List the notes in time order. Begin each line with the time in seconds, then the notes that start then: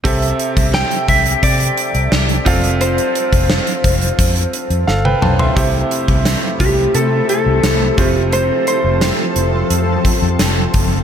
0.04 C2 C3 C4 G4 A4 E5, kick, closed hi-hat
0.22 closed hi-hat
0.39 closed hi-hat
0.57 C2, kick, closed hi-hat
0.74 G5, snare
0.91 closed hi-hat
1.08 C2 E5, kick, closed hi-hat
1.26 closed hi-hat
1.43 C3 D5, kick, closed hi-hat
1.60 closed hi-hat
1.77 closed hi-hat
1.95 C2, closed hi-hat
2.12 C2, snare
2.29 closed hi-hat
2.45 F1 C4 F4 A4 F5, kick, closed hi-hat
2.64 closed hi-hat
2.81 C5, closed hi-hat
2.98 closed hi-hat
3.15 closed hi-hat
3.33 F1, kick, closed hi-hat
3.50 snare
3.67 closed hi-hat
3.84 F1, kick, closed hi-hat
4.01 closed hi-hat
4.19 F2, kick, closed hi-hat
4.36 closed hi-hat
4.53 closed hi-hat
4.70 F2, closed hi-hat
4.87 G1 A4 F5, snare
5.05 B4 G5, high tom
5.22 B1 C5 A5, mid tom
5.39 E5 C6, floor tom
5.55 C2 C3 A3 E4 G4 C5, kick, closed hi-hat
5.91 closed hi-hat
6.08 C2, kick
6.25 snare, closed hi-hat
6.60 C2 G4, kick, closed hi-hat
6.95 C3 A4, closed hi-hat
7.29 A4, closed hi-hat
7.46 C2
7.63 C2, snare, closed hi-hat
7.97 F1 F3 A3 C4 F4 A4 C5, kick, closed hi-hat
8.04 G4
8.32 C5, closed hi-hat
8.67 C5, closed hi-hat
8.84 F1
9.01 snare, closed hi-hat
9.36 F1, closed hi-hat
9.70 F2, closed hi-hat
10.05 kick, closed hi-hat
10.22 F2
10.39 F1, snare, closed hi-hat
10.74 F#1, kick, closed hi-hat